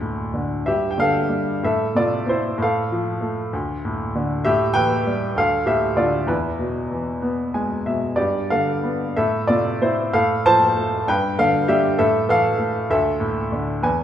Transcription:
0.00 0.63 D2 medium
0.00 0.64 A2 soft
0.34 0.65 D3 soft
0.66 1.60 G2 soft
0.66 0.90 G4 medium
0.66 0.92 E5 medium
0.91 0.98 G5 medium
0.98 1.60 D3 soft
0.98 1.60 A4 medium
0.98 1.65 F5 medium
1.29 1.61 G3 soft
1.63 2.56 A2 soft
1.63 1.94 A4 medium
1.63 1.97 E5 medium
1.95 2.57 C3 soft
1.95 2.26 F4 medium
1.95 2.29 D5 medium
2.26 2.57 C4 soft
2.26 2.58 E4 soft
2.26 2.61 C5 medium
2.58 3.49 A2 medium
2.62 4.12 A4 medium
2.62 4.12 F5 medium
2.92 3.51 F3 soft
3.21 3.51 A3 soft
3.53 4.42 D2 medium
3.85 4.44 A2 soft
4.15 4.44 D3 soft
4.45 5.34 A2 medium
4.45 4.74 G4 medium
4.45 4.76 E5 medium
4.74 5.35 E3 soft
4.74 5.32 B4 medium
4.74 5.37 G5 loud
5.07 5.36 G3 soft
5.36 6.25 D2 medium
5.36 5.65 A4 medium
5.36 5.68 F5 medium
5.66 6.26 A2 soft
5.66 5.95 G4 medium
5.66 5.98 E5 medium
5.97 6.27 D3 soft
5.97 6.26 F4 medium
5.97 6.29 D5 medium
6.27 8.13 E2 medium
6.27 7.81 E4 soft
6.27 7.81 B4 medium
6.59 7.81 B2 soft
6.91 8.14 E3 soft
7.22 8.15 B3 soft
7.54 8.16 G#3 soft
7.54 7.84 G#5 medium
7.86 8.17 B2 soft
7.86 8.16 E5 medium
8.16 9.13 G2 soft
8.16 8.48 G4 soft
8.16 8.50 D5 medium
8.50 9.15 D3 soft
8.50 9.13 A4 medium
8.50 9.18 F5 medium
8.84 9.15 B3 soft
9.16 10.10 A2 medium
9.16 9.47 A4 medium
9.16 9.50 E5 medium
9.47 10.11 C3 soft
9.47 9.79 F4 medium
9.47 9.78 D5 medium
9.81 10.12 C4 soft
9.81 10.11 E4 medium
9.81 10.14 C5 medium
10.13 11.05 A2 medium
10.13 10.43 A4 medium
10.13 10.46 F5 medium
10.46 11.06 F3 soft
10.46 11.04 C5 medium
10.46 11.10 A5 loud
10.77 11.07 A3 medium
11.08 11.97 G2 medium
11.08 11.37 B4 medium
11.08 11.40 G5 medium
11.39 11.98 D3 soft
11.39 11.67 A4 medium
11.39 11.71 F5 medium
11.68 11.99 G3 medium
11.68 11.97 G4 medium
11.68 11.97 E5 medium
11.98 12.88 A2 medium
11.98 12.27 A4 medium
11.98 12.30 E5 medium
12.29 12.88 E3 medium
12.29 12.86 A4 medium
12.29 12.93 F5 loud
12.58 12.89 A3 medium
12.90 13.81 D2 medium
12.90 13.80 A4 medium
12.90 13.86 E5 medium
13.20 13.81 A2 soft
13.52 13.83 D3 soft
13.83 14.04 E2 medium
13.83 14.04 B4 medium
13.83 14.04 G#5 medium

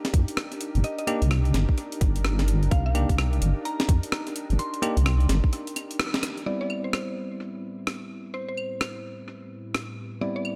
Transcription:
0.00 6.42 D4 medium
0.00 6.42 D#4 medium
0.00 6.42 G4 medium
0.00 6.42 A#4 medium
0.05 snare medium
0.05 closed hi-hat medium
0.14 0.26 F2 loud
0.14 kick loud
0.14 closed hi-hat loud
0.28 closed hi-hat medium
0.37 cross-stick loud
0.52 closed hi-hat medium
0.61 closed hi-hat loud
0.75 0.83 G1 medium
0.75 closed hi-hat soft
0.84 0.93 D#5 medium
0.84 closed hi-hat medium
0.98 1.04 D#5 medium
0.98 closed hi-hat medium
1.07 1.21 A#3 loud
1.07 1.21 D4 medium
1.07 1.21 D#4 medium
1.07 1.21 G4 loud
1.07 closed hi-hat loud
1.07 claves medium
1.22 1.52 C2 medium
1.22 closed hi-hat medium
1.31 cross-stick loud
1.31 claves medium
1.45 closed hi-hat soft
1.54 1.66 G1 loud
1.54 snare soft
1.54 closed hi-hat loud
1.69 kick medium
1.78 closed hi-hat medium
1.92 closed hi-hat medium
2.01 2.69 G1 medium
2.01 kick loud
2.01 closed hi-hat loud
2.16 closed hi-hat medium
2.25 cross-stick loud
2.39 snare soft
2.39 closed hi-hat medium
2.48 closed hi-hat loud
2.63 closed hi-hat soft
2.71 3.06 C2 loud
2.71 2.83 F5 medium
2.71 kick loud
2.71 closed hi-hat medium
2.86 3.07 F5 medium
2.95 3.08 A#3 loud
2.95 3.08 D4 medium
2.95 3.08 D#4 medium
2.95 3.08 G4 loud
2.95 closed hi-hat loud
2.95 claves medium
3.09 3.39 C2 medium
3.09 kick medium
3.09 closed hi-hat medium
3.18 cross-stick loud
3.18 claves medium
3.33 closed hi-hat soft
3.42 3.54 G1 loud
3.42 closed hi-hat loud
3.65 3.83 A#5 medium
3.65 closed hi-hat medium
3.80 snare medium
3.80 closed hi-hat medium
3.89 4.01 F2 loud
3.89 kick loud
3.89 closed hi-hat loud
4.03 closed hi-hat medium
4.12 cross-stick loud
4.27 closed hi-hat medium
4.36 closed hi-hat loud
4.50 4.58 G1 medium
4.50 closed hi-hat soft
4.59 5.26 C6 medium
4.59 closed hi-hat medium
4.74 closed hi-hat medium
4.82 4.96 A#3 loud
4.82 4.96 D4 medium
4.82 4.96 D#4 medium
4.82 4.96 G4 loud
4.82 closed hi-hat loud
4.82 claves medium
4.97 5.27 C2 medium
4.97 closed hi-hat medium
5.06 cross-stick loud
5.06 claves medium
5.20 closed hi-hat soft
5.29 5.41 G1 loud
5.29 snare medium
5.29 closed hi-hat loud
5.44 kick medium
5.53 closed hi-hat medium
5.67 closed hi-hat medium
5.76 closed hi-hat loud
5.76 claves medium
5.91 closed hi-hat medium
6.00 cross-stick loud
6.14 snare medium
6.14 closed hi-hat medium
6.23 cross-stick medium
6.23 closed hi-hat loud
6.38 closed hi-hat soft
6.46 10.55 A2 medium
6.46 10.19 G3 medium
6.46 10.19 B3 medium
6.46 10.19 C4 medium
6.46 10.19 E4 medium
6.46 10.55 E4 medium
6.46 10.55 G4 medium
6.46 10.55 B4 medium
6.46 6.58 D5 medium
6.61 6.81 D5 medium
6.70 claves medium
6.84 6.90 C5 medium
6.93 7.03 C5 medium
6.93 cross-stick loud
6.93 claves medium
7.87 cross-stick loud
8.34 8.43 C5 medium
8.49 8.54 C5 medium
8.57 claves medium
8.81 cross-stick loud
8.81 claves medium
9.75 cross-stick loud
10.21 10.55 G3 medium
10.21 10.55 B3 medium
10.21 10.55 C4 medium
10.21 10.55 E4 medium
10.21 10.33 D5 medium
10.36 10.55 D5 medium
10.45 claves medium

